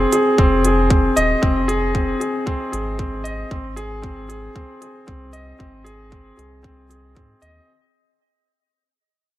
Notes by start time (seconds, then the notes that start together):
Already playing: C4 G#4
0.12 G#4, closed hi-hat
0.38 F1 C4, kick
0.65 G#4, closed hi-hat
0.90 C4, kick
1.16 D#1 D#5, closed hi-hat
1.42 F1 C4, kick
1.68 G#4, closed hi-hat
1.94 C4, kick
2.20 G#4, closed hi-hat
2.46 C4, kick
2.72 G#1 G#4, closed hi-hat
2.99 C4, kick
3.24 D#5, closed hi-hat
3.51 G#1 C4, kick
3.76 G#4, closed hi-hat
4.02 C4, kick
4.29 G#4, closed hi-hat
4.55 C4, kick
4.81 G#4, closed hi-hat
5.07 C2 C4, kick
5.33 D#5, closed hi-hat
5.59 G#1 C4, kick
5.84 G#4, closed hi-hat
6.11 C4, kick
6.37 C2 G#4, closed hi-hat
6.63 C4, kick
6.89 G#4, closed hi-hat
7.15 G#2 C4, kick
7.42 D#2 D#5, closed hi-hat